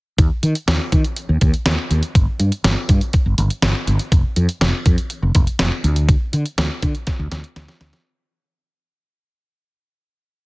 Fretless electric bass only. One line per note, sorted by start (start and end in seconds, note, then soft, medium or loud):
0.18 0.28 D#2 loud
0.43 0.53 D#3 medium
0.68 0.78 D#2 medium
0.92 1.02 D#3 medium
1.29 1.39 D#2 loud
1.42 1.51 D#2 medium
1.66 1.76 D#2 loud
1.91 2.01 D#2 loud
2.15 2.25 G1 loud
2.40 2.50 G2 medium
2.64 2.74 G1 medium
2.89 2.99 G2 loud
3.26 3.36 G1 medium
3.38 3.48 G1 loud
3.63 3.73 G1 loud
3.87 3.97 G1 loud
4.12 4.22 F1 loud
4.36 4.46 F2 medium
4.61 4.71 F1 loud
4.86 4.96 F2 medium
5.23 5.32 F1 medium
5.35 5.45 F1 loud
5.59 5.69 F1 medium
5.84 6.14 D2 loud
6.33 6.43 D3 medium
6.58 6.68 D2 medium
6.83 6.92 D3 loud
7.19 7.29 D2 medium
7.32 7.42 D2 loud
7.56 7.66 D2 medium
7.81 7.91 D2 medium